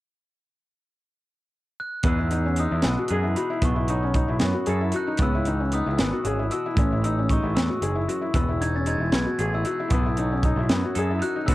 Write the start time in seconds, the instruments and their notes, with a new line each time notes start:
1.80 glockenspiel F#6
2.03 picked electric bass E2, clean electric guitar E2 E3 G#3 D#4, felt piano B3, glockenspiel E6, kick, closed hi-hat
2.08 clean electric guitar G#4
2.19 felt piano E4
2.31 clean electric guitar E3, felt piano D#4, closed hi-hat
2.46 felt piano C#4
2.56 felt piano D#4, glockenspiel D#6, closed hi-hat
2.61 clean electric guitar G#3
2.71 picked electric bass E2, felt piano E4
2.82 picked electric bass B1, clean electric guitar B2, felt piano B3, snare, closed hi-hat
2.99 felt piano F#4
3.08 picked electric bass F#2, clean electric guitar G#4, felt piano G#4, closed hi-hat
3.24 felt piano E4
3.36 clean electric guitar D#4, felt piano F#4, glockenspiel B5, closed hi-hat
3.50 felt piano E4
3.62 picked electric bass B1, clean electric guitar B2, felt piano B3, glockenspiel C#6, kick, closed hi-hat
3.76 felt piano E4
3.88 clean electric guitar F#3, felt piano D#4, closed hi-hat
4.03 felt piano C#4
4.14 felt piano D#4, kick, closed hi-hat
4.28 picked electric bass B1, felt piano E4
4.40 picked electric bass F#2, clean electric guitar F#2, felt piano B3, snare, closed hi-hat
4.54 felt piano F#4
4.66 picked electric bass F#2, felt piano G#4, clean electric guitar A4, closed hi-hat
4.81 felt piano E4
4.92 felt piano F#4, closed hi-hat
4.96 clean electric guitar D#4, glockenspiel F#6
5.07 felt piano D#4
5.17 picked electric bass C#2, kick, closed hi-hat
5.22 clean electric guitar C#3, felt piano B3, glockenspiel E6
5.35 felt piano E4
5.45 clean electric guitar E3, felt piano D#4, closed hi-hat
5.60 felt piano C#4
5.72 clean electric guitar B3, felt piano D#4, glockenspiel D#6, closed hi-hat
5.86 picked electric bass C#2, felt piano E4
5.98 picked electric bass G#1, clean electric guitar D#3, felt piano B3, snare, closed hi-hat
6.13 felt piano F#4
6.24 picked electric bass G#1, clean electric guitar C#3, felt piano G#4, closed hi-hat
6.39 felt piano E4
6.50 clean electric guitar B2, felt piano F#4, glockenspiel E6, closed hi-hat
6.66 felt piano E4
6.75 picked electric bass A1, clean electric guitar A2, kick, closed hi-hat
6.79 felt piano C#4
6.92 felt piano E4
7.02 clean electric guitar E3, felt piano D#4, glockenspiel E6, closed hi-hat
7.19 felt piano C#4
7.29 clean electric guitar G#3, felt piano D#4, glockenspiel C#6, kick, closed hi-hat
7.42 picked electric bass A1, felt piano E4
7.55 picked electric bass E2, clean electric guitar A2, felt piano B3, glockenspiel E6, snare, closed hi-hat
7.70 felt piano F#4
7.82 picked electric bass F#1, clean electric guitar G#2, felt piano G#4, closed hi-hat
7.95 felt piano E4
8.08 clean electric guitar F#2, felt piano F#4, closed hi-hat
8.21 felt piano E4
8.34 picked electric bass E1, clean electric guitar E2, felt piano B3, glockenspiel E6, kick, closed hi-hat
8.48 felt piano E4
8.60 clean electric guitar E3, felt piano D#4, glockenspiel G#6, closed hi-hat
8.75 felt piano C#4, glockenspiel A6
8.86 clean electric guitar G#3, felt piano D#4, closed hi-hat
8.90 glockenspiel G#6
8.98 picked electric bass E1, felt piano E4
9.12 picked electric bass B1, clean electric guitar B2, felt piano B3, snare, closed hi-hat
9.16 glockenspiel G#6
9.26 felt piano F#4
9.39 picked electric bass A1, clean electric guitar G#4, felt piano G#4, closed hi-hat
9.54 felt piano E4, glockenspiel E6
9.64 clean electric guitar D#4, felt piano F#4, glockenspiel E6, closed hi-hat
9.80 felt piano E4
9.88 picked electric bass B1, clean electric guitar B2, glockenspiel D#6, kick, closed hi-hat
9.93 felt piano B3
10.06 felt piano E4
10.17 clean electric guitar F#3, felt piano D#4, closed hi-hat
10.32 felt piano C#4
10.43 felt piano D#4, kick, closed hi-hat
10.56 picked electric bass B1, felt piano E4
10.69 clean electric guitar F#2, picked electric bass F#2, felt piano B3, snare, closed hi-hat
10.85 felt piano F#4
10.95 picked electric bass F#2, felt piano G#4, clean electric guitar A4, closed hi-hat
11.10 felt piano E4
11.19 clean electric guitar D#4, felt piano F#4, glockenspiel F#6, closed hi-hat
11.36 felt piano D#4
11.46 picked electric bass C#2, clean electric guitar C#3 E3 B3 D#4 F#4, felt piano B3, glockenspiel E6, kick, closed hi-hat